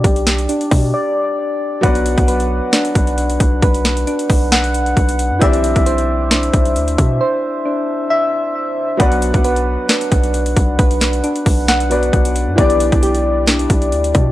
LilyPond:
<<
  \new Staff \with { instrumentName = "Synth keys" } { \time 4/4 \key b \phrygian \tempo 4 = 134 <d' g' d''>4 d'4 d''2 | fis''4 b'4 d'2 | b'4 d'4 fis''2 | e''4 c''4 d'2 |
c''4 d'4 e''2 | fis''4 b'4 d'2 | b'4 d'4 fis''2 | d''4 g'4 d'2 | }
  \new Staff \with { instrumentName = "Grand piano" } { \time 4/4 \key b \phrygian r1 | <fis b d' b' d''>1~ | <fis b d' b' d''>1 | <e c' d' g' d''>1~ |
<e c' d' g' d''>1 | <fis b d' b' d''>1~ | <fis b d' b' d''>2~ <fis b d' b' d''>8 <fis b d' b' d''>4. | <e b d' g' d''>1 | }
  \new Staff \with { instrumentName = "808-style bass" } { \clef bass \time 4/4 \key b \phrygian b,,4 r8 b,8 r2 | b,,8. b,,4 r8. b,,4 b,,8 | b,,4 r8 b,,4. b,,8. fis,16 | b,,8. b,,4.~ b,,16 b,,8 d,8 b,8 |
r1 | b,,8. b,,4 r8. b,,4 b,,8 | b,,4 r8 b,,4. b,,8. fis,16 | b,,8. b,,4.~ b,,16 b,,8 d,8 b,8 | }
  \new DrumStaff \with { instrumentName = "Drums" } \drummode { \time 4/4 <hh bd>16 hh16 <hh sn>16 hh16 hh16 hh16 <hho bd>8 r4 r4 | <hh bd>16 hh16 hh16 <hh bd>16 hh16 hh8. <hh sn>16 hh16 <hh bd>16 hh16 hh16 hh16 <hh bd>8 | <hh bd>16 hh16 <hh sn>16 hh16 hh16 hh16 <hho bd>8 <hh sn>16 hh16 hh16 hh16 <hh bd>16 hh16 hh8 | <hh bd>16 hh16 hh16 <hh bd>16 hh16 hh8. <hh sn>16 hh16 <hh bd>16 hh16 hh16 hh16 <hh bd>8 |
r4 r4 r4 r4 | <hh bd>16 hh16 hh16 <hh bd>16 hh16 hh8. <hh sn>16 hh16 <hh bd>16 hh16 hh16 hh16 <hh bd>8 | <hh bd>16 hh16 <hh sn>16 hh16 hh16 hh16 <hho bd>8 <hh sn>16 hh16 hh16 hh16 <hh bd>16 hh16 hh8 | <hh bd>16 hh16 hh16 <hh bd>16 hh16 hh8. <hh sn>16 hh16 <hh bd>16 hh16 hh16 hh16 <hh bd>8 | }
>>